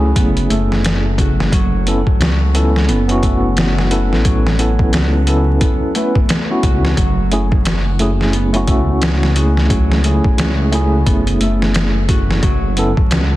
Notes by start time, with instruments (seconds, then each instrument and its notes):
Already playing: detuned saw bass C#2, harp F#3 A3 B3 F#4, tine electric piano A3 C#4 E4 G#4
0.16 detuned saw bass F#1, harp B3, kick, closed hi-hat
0.37 closed hi-hat
0.50 detuned saw bass F#1, harp A3, closed hi-hat
0.72 snare
0.85 snare, closed hi-hat
1.18 harp F#4, kick, closed hi-hat
1.40 snare
1.52 detuned saw bass F#1, harp F#3, kick, closed hi-hat
1.86 tine electric piano B3 C#4 E4 A4, closed hi-hat
2.07 kick
2.20 detuned saw bass C#2, harp F#4, snare, closed hi-hat
2.54 tine electric piano B3 C#4 E4 A4, closed hi-hat
2.76 snare
2.88 detuned saw bass F#1, harp B3, closed hi-hat
3.08 tine electric piano B3 C#4 E4 F#4, closed hi-hat
3.22 harp A3, kick, closed hi-hat
3.57 snare, closed hi-hat
3.78 snare
3.91 tine electric piano B3 C#4 E4 A4, harp F#4, closed hi-hat
4.11 detuned saw bass A1, snare
4.25 harp F#3, kick, closed hi-hat
4.47 snare
4.59 tine electric piano B3 C#4 E4 A4, closed hi-hat
4.79 kick
4.93 detuned saw bass C#2, harp F#4, snare, closed hi-hat
5.27 tine electric piano B3 C#4 E4 A4, closed hi-hat
5.61 harp B3, kick, closed hi-hat
5.95 harp A3, tine electric piano B3 C#4 E4 B4, closed hi-hat
6.15 kick
6.29 snare, closed hi-hat
6.50 tine electric piano B3 C#4 E4 F#4
6.63 detuned saw bass C#2, harp F#4, kick, closed hi-hat
6.85 snare
6.97 detuned saw bass F#1, harp F#3, kick, closed hi-hat
7.31 tine electric piano A3 C#4 E4 G#4, closed hi-hat
7.52 kick
7.65 harp F#4, snare, closed hi-hat
7.99 tine electric piano A3 C#4 E4 G#4, closed hi-hat
8.21 snare
8.33 harp B3, closed hi-hat
8.53 tine electric piano A3 C#4 E4 F#4, closed hi-hat
8.67 detuned saw bass C#2, harp A3, kick, closed hi-hat
9.02 snare, closed hi-hat
9.23 snare
9.35 tine electric piano A3 C#4 E4 G#4, harp F#4, closed hi-hat
9.57 snare
9.70 harp F#3, kick, closed hi-hat
9.92 snare
10.04 tine electric piano A3 C#4 E4 G#4, closed hi-hat
10.24 kick
10.38 detuned saw bass C#2, harp F#4, snare, closed hi-hat
10.72 tine electric piano A3 C#4 E4 G#4, closed hi-hat
11.06 detuned saw bass F#1, harp B3, kick, closed hi-hat
11.27 closed hi-hat
11.40 detuned saw bass F#1, harp A3, closed hi-hat
11.62 snare
11.74 snare, closed hi-hat
12.08 harp F#4, kick, closed hi-hat
12.31 snare
12.43 detuned saw bass F#1, harp F#3, kick, closed hi-hat
12.77 tine electric piano B3 C#4 E4 A4, closed hi-hat
12.97 kick
13.11 detuned saw bass C#2, harp F#4, snare, closed hi-hat